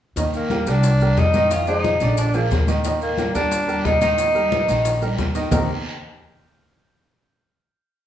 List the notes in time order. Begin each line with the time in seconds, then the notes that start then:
0.16 D#2 D#3 D#4 D#5, high bongo, high conga, long guiro, maracas
0.34 A#3, high conga, maracas
0.50 G3 G4 A#4, high bongo, high conga, short guiro, maracas
0.67 C2 G3 D4 G4 A#4, high conga, short guiro, maracas
0.83 high bongo, high conga, long guiro, maracas
1.01 G3 G4 A#4, high conga, maracas
1.17 F2 D#4, high bongo, low bongo, high conga, short guiro, maracas
1.34 D#3 D#4 D#5, high conga, short guiro, maracas
1.51 F4, high bongo, high conga, long guiro, maracas
1.67 G#3 D#4 G#4 C5, high bongo, high conga, maracas
1.84 high bongo, high conga, short guiro, maracas
2.00 A#1 D3 D4 D5, high bongo, high conga, short guiro, maracas
2.17 D4, high bongo, high conga, long guiro, maracas
2.34 F3 A#3 F4 G#4, high bongo, high conga, maracas
2.51 D#2, high bongo, low bongo, high conga, short guiro, maracas
2.67 D#3 D#4 D#5, high conga, short guiro, maracas
2.84 D#3 D#4 D#5, high bongo, high conga, long guiro, maracas
3.01 A#3, high conga, maracas
3.18 G3 G4 A#4, high bongo, high conga, short guiro, maracas
3.35 D#2 G3 D4 G4 A#4, high conga, short guiro, maracas
3.51 high bongo, high conga, long guiro, maracas
3.68 G3 G4 A#4, high conga, maracas
3.84 D#2 D#4, high bongo, low bongo, high conga, short guiro, maracas
4.01 D#3 D#4 D#5, high conga, short guiro, maracas
4.18 high bongo, high conga, long guiro, maracas
4.34 G3 G4 A#4, high bongo, high conga, maracas
4.52 high bongo, high conga, short guiro, maracas
4.68 A#1 D#3 D#4 D#5, high bongo, high conga, short guiro, maracas
4.85 high bongo, high conga, long guiro, maracas
5.02 G3 G4 A#4, high bongo, high conga, maracas
5.18 D#2, high bongo, low bongo, high conga, short guiro, maracas
5.35 D#3 D#4 D#5, short guiro, maracas
5.51 D#2 D#3 A#3 C4 D#4 G4 A#4, low bongo, low conga, long guiro, maracas